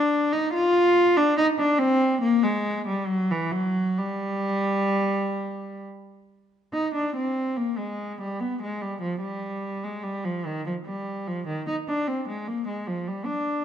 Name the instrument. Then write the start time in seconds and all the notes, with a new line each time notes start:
cello
Already playing: D4
0.32 D#4
0.53 F4
1.17 D4
1.37 D#4
1.58 D4
1.79 C4
2.21 A#3
2.43 G#3
2.87 G3
3.08 F#3
3.31 E3
3.52 F#3
3.98 G3
6.73 D#4
6.95 D4
7.16 C4
7.56 A#3
7.77 G#3
8.21 G3
8.40 B3
8.62 G#3
8.81 G3
9.02 F3
9.21 G3
9.84 G#3
10.03 G3
10.24 F3
10.46 D#3
10.66 F3
10.85 G3
11.27 F3
11.48 D#3
11.67 D#4
11.88 D4
12.07 C4
12.28 G#3
12.47 A#3
12.68 G#3
12.87 F3
13.08 G3
13.25 D4